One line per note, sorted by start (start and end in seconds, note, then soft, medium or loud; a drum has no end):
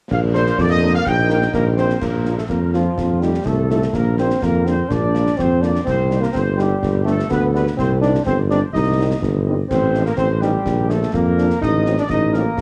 0.11 0.51 A#1 medium
0.11 1.75 A#3 medium
0.11 1.03 D4 medium
0.11 0.21 F5 medium
0.11 concert bass drum medium
0.11 snare medium
0.11 crash medium
0.33 0.42 A#3 medium
0.33 0.42 D4 medium
0.33 0.42 A#4 medium
0.33 0.56 C5 medium
0.33 snare medium
0.47 snare medium
0.58 0.98 F2 medium
0.58 0.70 D5 medium
0.58 concert bass drum medium
0.58 snare medium
0.70 0.93 D#5 loud
0.81 0.90 A#3 medium
0.81 0.90 D4 medium
0.81 0.90 A#4 medium
0.94 1.05 F5 loud
1.06 1.46 A#1 medium
1.06 1.79 D#4 medium
1.06 1.54 G5 loud
1.06 concert bass drum medium
1.06 snare medium
1.29 1.38 A#3 medium
1.29 1.38 D#4 medium
1.29 1.38 A#4 medium
1.29 snare medium
1.42 snare medium
1.54 1.94 A#1 medium
1.54 1.65 A#3 medium
1.54 1.65 A#4 medium
1.54 concert bass drum medium
1.54 snare medium
1.77 1.86 A#3 medium
1.77 2.00 C4 medium
1.77 1.86 D#4 medium
1.77 1.86 A#4 medium
1.77 2.00 C5 medium
1.77 snare medium
1.90 snare soft
2.01 2.42 A#1 medium
2.01 2.35 A#3 medium
2.01 2.36 A#4 medium
2.01 concert bass drum medium
2.01 snare medium
2.01 crash soft
2.25 2.35 A#3 soft
2.25 2.35 D4 soft
2.25 2.35 F4 soft
2.25 snare soft
2.38 2.43 A3 medium
2.38 2.43 A4 medium
2.38 snare soft
2.49 2.89 F2 medium
2.49 2.60 A#3 medium
2.49 2.72 A#4 medium
2.49 concert bass drum medium
2.49 snare medium
2.74 3.22 F3 medium
2.74 2.83 A#3 soft
2.74 2.83 D4 soft
2.74 3.19 F4 soft
2.74 2.83 F4 soft
2.74 snare soft
2.97 3.37 F2 medium
2.97 concert bass drum medium
2.97 snare medium
3.20 3.48 G3 medium
3.20 3.30 A3 soft
3.20 3.29 D#4 soft
3.20 3.29 F4 soft
3.20 3.44 G4 medium
3.20 snare soft
3.34 snare soft
3.46 3.86 C2 medium
3.46 3.69 A3 medium
3.46 3.70 A4 medium
3.46 concert bass drum medium
3.46 snare medium
3.69 3.96 A3 medium
3.69 3.78 A3 soft
3.69 3.78 D#4 soft
3.69 3.79 F4 soft
3.69 3.82 A4 medium
3.69 snare soft
3.82 snare soft
3.93 4.34 A#1 medium
3.93 4.18 A#3 medium
3.93 4.16 A#4 medium
3.93 concert bass drum medium
3.93 snare medium
4.17 4.27 A#3 soft
4.17 4.45 C4 medium
4.17 4.26 D4 soft
4.17 4.27 F4 soft
4.17 4.40 C5 medium
4.17 snare soft
4.30 snare soft
4.42 4.82 F2 medium
4.42 4.67 A#3 medium
4.42 4.64 A#4 medium
4.42 concert bass drum medium
4.42 snare medium
4.65 4.75 A#3 soft
4.65 4.90 C4 medium
4.65 4.75 D4 soft
4.65 4.74 F4 soft
4.65 4.89 C5 medium
4.65 snare soft
4.89 5.30 A#1 medium
4.89 5.39 D4 medium
4.89 5.39 D5 medium
4.89 concert bass drum medium
4.89 snare medium
5.14 5.23 A#3 soft
5.14 5.23 D4 soft
5.14 5.23 F4 soft
5.14 snare soft
5.27 snare soft
5.37 5.78 F2 medium
5.37 5.63 C4 medium
5.37 5.62 C5 medium
5.37 concert bass drum medium
5.37 snare medium
5.61 5.71 A#3 medium
5.61 5.70 D4 soft
5.61 5.84 D4 medium
5.61 5.70 F4 medium
5.61 5.85 D5 medium
5.61 snare soft
5.75 snare soft
5.84 6.26 C2 medium
5.84 6.22 C4 medium
5.84 6.20 C5 medium
5.84 concert bass drum medium
5.84 snare medium
5.84 crash soft
6.09 6.18 G3 soft
6.09 6.18 D#4 soft
6.09 snare soft
6.20 6.31 A#3 medium
6.20 6.35 A#4 medium
6.20 snare soft
6.32 6.74 G1 medium
6.32 6.43 C4 medium
6.32 6.57 C5 medium
6.32 concert bass drum medium
6.32 snare medium
6.56 7.01 G3 medium
6.56 6.67 G3 soft
6.56 6.67 D#4 medium
6.56 snare soft
6.60 7.07 G4 medium
6.82 7.22 G1 medium
6.82 concert bass drum medium
6.82 snare medium
7.05 7.14 G3 soft
7.05 7.28 A3 medium
7.05 7.14 B3 medium
7.05 7.15 D4 medium
7.05 snare soft
7.09 7.30 A4 medium
7.19 snare soft
7.30 7.70 D2 medium
7.30 7.52 B3 medium
7.30 7.42 B4 medium
7.30 concert bass drum medium
7.30 snare medium
7.53 7.63 G3 medium
7.53 7.64 B3 medium
7.53 7.63 B3 medium
7.53 7.63 D4 medium
7.53 7.66 B4 medium
7.53 snare soft
7.67 snare soft
7.77 8.18 C2 medium
7.77 8.00 C4 medium
7.77 7.89 C5 medium
7.77 concert bass drum medium
7.77 snare medium
8.01 8.10 G3 medium
8.01 8.11 C4 medium
8.01 8.24 D4 medium
8.01 8.10 D#4 medium
8.01 8.12 D5 medium
8.01 snare soft
8.15 snare soft
8.25 8.62 G1 medium
8.25 8.36 C4 medium
8.25 8.37 C5 medium
8.25 concert bass drum medium
8.25 snare medium
8.49 8.59 G3 medium
8.49 8.58 C4 medium
8.49 8.61 D4 medium
8.49 8.58 D#4 medium
8.49 8.60 D5 medium
8.49 snare soft
8.73 9.14 C2 medium
8.73 9.19 D#4 medium
8.73 9.18 D#5 medium
8.73 concert bass drum medium
8.73 snare medium
8.98 9.06 G3 medium
8.98 9.06 C4 medium
8.98 9.07 D#4 medium
9.21 9.61 G1 medium
9.21 concert bass drum medium
9.21 snare medium
9.46 9.55 G3 medium
9.46 9.55 C4 medium
9.46 9.55 D#4 medium
9.70 10.10 A1 medium
9.70 10.03 C4 medium
9.70 10.03 C5 medium
9.70 concert bass drum medium
9.70 snare medium
9.70 crash soft
9.94 10.02 F3 medium
9.94 10.02 C4 medium
9.94 10.02 D#4 medium
9.94 snare soft
10.06 10.12 A#3 medium
10.06 10.17 A#4 medium
10.06 snare soft
10.17 10.57 A1 medium
10.17 10.28 C4 medium
10.17 10.39 C5 medium
10.17 concert bass drum medium
10.17 snare medium
10.41 10.50 F3 medium
10.41 10.91 G3 medium
10.41 10.50 C4 medium
10.41 10.50 D#4 medium
10.41 10.89 G4 medium
10.41 snare soft
10.65 11.05 A#1 medium
10.65 concert bass drum medium
10.65 snare medium
10.89 10.98 F3 medium
10.89 11.13 A3 medium
10.89 10.98 D4 medium
10.89 11.13 A4 medium
10.89 snare soft
11.03 snare soft
11.13 11.53 F2 medium
11.13 11.58 A#3 medium
11.13 11.61 A#4 medium
11.13 concert bass drum medium
11.13 snare medium
11.37 11.46 F3 medium
11.37 11.46 D4 medium
11.37 snare soft
11.50 snare soft
11.61 12.01 A1 medium
11.61 11.95 D#4 medium
11.61 11.94 D#5 medium
11.61 concert bass drum medium
11.61 snare medium
11.85 11.94 F#3 medium
11.85 11.94 C4 medium
11.85 11.94 D#4 medium
11.85 snare medium
11.98 12.03 D4 medium
11.98 12.09 D5 medium
11.98 snare soft
12.09 12.49 A1 medium
12.09 12.37 D#4 medium
12.09 12.31 D#5 medium
12.09 concert bass drum medium
12.09 snare medium
12.33 12.42 F#3 medium
12.33 12.61 A#3 medium
12.33 12.42 C4 medium
12.33 12.42 D#4 medium
12.33 12.61 A#4 medium
12.33 snare soft
12.57 12.61 A#1 medium
12.57 concert bass drum medium
12.57 snare medium